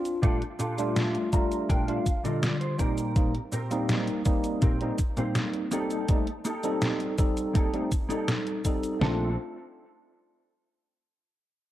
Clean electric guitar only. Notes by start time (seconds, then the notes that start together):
0.22 A#2 D4 F4 G4 A4
0.59 A#2 D4 F4 G4 A4
1.33 A#5
1.69 A#2 D4 F4 A#4 G5
1.88 F5
2.24 A#2 D4 F4 A4 D#5
2.42 D5
2.60 C5, muted clean electric guitar stroke
2.78 A#2 C4 G4 A#4
3.52 A#2 C4 G4 A#4
4.61 A#2 C4 G4 A#4
5.17 A#2 C4 G4 C5
5.53 muted clean electric guitar stroke
5.71 A#3 D#4 G4 A4
6.44 A#3 D#4 G4 A4
7.54 A#3 D#4 G4 A4
8.09 A#3 D#4 G4 A4
8.46 muted clean electric guitar stroke
9.01 C4 D4 A4